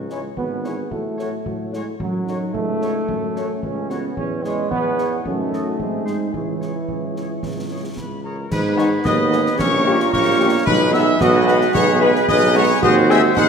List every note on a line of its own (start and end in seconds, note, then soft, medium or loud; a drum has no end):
0.00 0.28 C#2 medium
0.10 0.22 G#3 medium
0.10 0.19 E4 soft
0.10 0.20 E4 soft
0.10 0.20 G#4 soft
0.10 0.20 C#5 soft
0.10 0.20 G#5 soft
0.10 snare soft
0.36 0.82 G#1 soft
0.36 0.88 B3 medium
0.36 0.66 F#4 soft
0.36 concert bass drum medium
0.64 0.74 E4 soft
0.64 0.74 G#4 soft
0.64 0.91 G#4 soft
0.64 0.74 C#5 soft
0.64 0.75 C#5 soft
0.64 0.74 G#5 soft
0.64 snare soft
0.91 1.36 A2 soft
0.91 1.72 A3 medium
0.91 1.17 F#4 soft
0.91 concert bass drum medium
1.18 1.31 E4 soft
1.18 1.28 F#4 soft
1.18 1.29 F#4 soft
1.18 1.29 A4 soft
1.18 1.28 C#5 soft
1.18 1.29 C#5 soft
1.18 1.28 F#5 soft
1.18 snare soft
1.46 1.91 A2 soft
1.46 1.75 F#4 medium
1.46 concert bass drum medium
1.72 1.86 G#3 soft
1.72 1.99 E4 medium
1.72 1.82 F#4 soft
1.72 1.83 F#4 soft
1.72 1.82 A4 soft
1.72 1.82 C#5 soft
1.72 1.84 C#5 soft
1.72 1.82 F#5 soft
1.72 snare soft
2.00 2.45 F#2 soft
2.00 2.51 F#3 medium
2.00 2.12 F#4 medium
2.00 concert bass drum medium
2.27 3.10 D#4 soft
2.27 2.37 F#4 soft
2.27 2.38 F#4 soft
2.27 2.37 A4 soft
2.27 2.37 C#5 soft
2.27 2.37 F#5 soft
2.27 snare soft
2.54 2.99 C#2 medium
2.54 3.59 A3 medium
2.54 concert bass drum medium
2.81 2.91 F#4 soft
2.81 2.91 A4 soft
2.81 2.91 C#5 medium
2.81 2.91 C#5 soft
2.81 2.91 F#5 soft
2.81 snare soft
3.08 3.54 F#2 medium
3.08 4.73 C#4 medium
3.08 concert bass drum medium
3.36 3.46 F#4 medium
3.36 3.46 F#4 soft
3.36 3.46 A4 medium
3.36 3.45 C#5 soft
3.36 3.46 C#5 soft
3.36 3.45 F#5 soft
3.36 snare soft
3.62 4.08 C#2 medium
3.62 3.90 C#4 medium
3.62 concert bass drum medium
3.89 4.17 B3 medium
3.89 3.99 F#4 medium
3.89 4.00 F#4 soft
3.89 4.00 A4 soft
3.89 3.99 C#5 medium
3.89 4.00 C#5 soft
3.89 3.99 F#5 medium
3.89 snare soft
4.16 4.65 E2 medium
4.16 4.43 C#4 medium
4.16 5.21 G#4 soft
4.16 5.22 C#5 medium
4.16 concert bass drum medium
4.44 4.71 G#3 medium
4.44 4.54 G#4 medium
4.44 4.54 C#5 medium
4.44 snare soft
4.71 5.19 E2 medium
4.71 5.21 B3 medium
4.71 5.26 E4 medium
4.71 concert bass drum medium
4.98 5.08 G#4 soft
4.98 5.08 C#5 soft
4.98 snare soft
5.25 5.74 F#2 medium
5.25 6.08 A3 medium
5.25 5.81 C#4 medium
5.25 5.78 D#4 soft
5.25 5.80 F#4 medium
5.25 5.76 A4 soft
5.25 5.53 D#5 medium
5.25 concert bass drum medium
5.51 5.61 A4 soft
5.51 5.65 C#5 soft
5.51 5.62 D#5 soft
5.51 snare soft
5.79 6.28 G#2 medium
5.79 6.32 C4 soft
5.79 6.30 D#4 medium
5.79 6.31 G#4 soft
5.79 6.31 C5 soft
5.79 concert bass drum medium
6.06 6.33 G#3 medium
6.06 6.16 G#4 soft
6.06 6.16 C5 soft
6.06 snare soft
6.32 6.75 C#2 soft
6.32 8.20 E3 medium
6.32 8.23 E4 soft
6.32 8.19 E4 soft
6.32 8.19 G#4 soft
6.32 7.93 C#5 soft
6.32 concert bass drum medium
6.61 6.71 G#4 soft
6.61 6.71 C#5 soft
6.61 snare soft
6.89 7.36 C#2 soft
6.89 concert bass drum medium
7.16 7.25 G#4 soft
7.16 7.26 C#5 soft
7.16 snare soft
7.43 7.90 C#2 soft
7.43 concert bass drum medium
7.43 snare soft
7.70 7.80 G#4 soft
7.70 7.80 C#5 soft
7.97 8.45 C#2 medium
7.97 8.22 B4 medium
7.97 8.22 B5 soft
7.97 concert bass drum medium
7.97 snare soft
8.24 8.34 G#4 soft
8.24 8.49 A#4 medium
8.24 8.34 C#5 soft
8.24 8.49 A#5 soft
8.51 8.96 G#2 loud
8.51 9.56 D#3 medium
8.51 9.56 B3 medium
8.51 9.02 G#4 medium
8.51 8.76 B4 loud
8.51 9.02 B4 medium
8.51 8.57 B5 loud
8.51 concert bass drum medium
8.51 crash medium
8.77 8.87 G#3 medium
8.77 8.87 B3 medium
8.77 8.87 D#4 medium
8.77 8.90 C#5 medium
8.77 8.84 C#6 loud
8.77 snare medium
9.04 9.50 D#2 medium
9.04 9.60 B3 loud
9.04 9.56 G#4 medium
9.04 9.56 B4 medium
9.04 9.55 D#5 loud
9.04 9.55 D#6 loud
9.04 concert bass drum medium
9.04 snare medium
9.30 9.41 G#3 medium
9.30 9.41 B3 medium
9.30 9.40 D#4 medium
9.30 snare medium
9.46 snare medium
9.58 10.04 A#1 medium
9.58 10.67 G3 medium
9.58 10.67 A#3 medium
9.58 9.86 C#4 loud
9.58 10.11 G4 medium
9.58 10.11 A#4 medium
9.58 10.09 C#5 loud
9.58 10.10 C#6 loud
9.58 concert bass drum medium
9.58 snare medium
9.85 9.96 G3 medium
9.85 9.96 C#4 medium
9.85 10.68 F4 loud
9.85 9.96 G4 medium
10.00 snare medium
10.12 10.58 A#1 medium
10.12 10.63 G4 medium
10.12 10.63 A#4 medium
10.12 10.63 C#5 loud
10.12 10.63 C#6 loud
10.12 concert bass drum medium
10.12 snare medium
10.40 10.50 G3 medium
10.40 10.50 C#4 medium
10.40 10.50 G4 medium
10.66 11.12 B1 loud
10.66 12.79 G#3 medium
10.66 12.83 B3 loud
10.66 11.20 D#4 medium
10.66 11.17 G#4 medium
10.66 10.92 B4 loud
10.66 11.20 B4 medium
10.66 10.95 B5 loud
10.66 concert bass drum loud
10.66 crash soft
10.93 11.04 G#3 medium
10.93 11.04 B3 medium
10.93 11.04 B4 medium
10.93 11.20 E5 loud
10.93 11.20 E6 loud
10.93 snare medium
11.20 11.66 B1 loud
11.20 11.76 F#4 loud
11.20 12.25 G#4 loud
11.20 12.25 B4 loud
11.20 11.75 D#5 loud
11.20 11.71 D#6 loud
11.20 concert bass drum medium
11.20 snare medium
11.47 11.57 G#3 medium
11.47 11.57 B3 medium
11.47 11.58 B4 loud
11.47 snare medium
11.61 snare medium
11.74 12.20 B1 loud
11.74 12.82 G#4 loud
11.74 12.00 C#5 loud
11.74 11.81 C#6 loud
11.74 concert bass drum medium
11.74 snare loud
12.01 12.11 G#3 loud
12.01 12.11 B3 medium
12.01 12.28 B4 loud
12.01 12.11 B4 loud
12.01 12.08 B5 loud
12.15 snare medium
12.28 12.74 B1 loud
12.28 12.79 G#4 loud
12.28 12.79 B4 loud
12.28 12.54 D#5 loud
12.28 12.35 D#6 loud
12.28 concert bass drum medium
12.28 snare medium
12.54 12.65 G#3 medium
12.54 12.65 B3 loud
12.54 12.65 B4 medium
12.54 12.82 C#5 loud
12.54 12.62 C#6 loud
12.82 13.28 D#2 loud
12.82 13.49 G#3 loud
12.82 13.49 C4 loud
12.82 13.33 F#4 loud
12.82 13.33 G#4 loud
12.82 13.33 C5 loud
12.82 12.95 D#5 loud
12.82 12.89 D#6 loud
12.82 concert bass drum medium
12.82 crash soft
13.10 13.20 G#3 loud
13.10 13.20 C4 loud
13.10 13.20 G#4 loud
13.10 13.22 E5 loud
13.10 13.36 E6 loud
13.10 snare medium
13.37 13.49 D#2 loud
13.37 13.49 D#4 loud
13.37 13.49 G#4 loud
13.37 13.49 C5 loud
13.37 13.49 F#5 loud
13.37 13.49 F#6 loud
13.37 concert bass drum medium
13.37 snare medium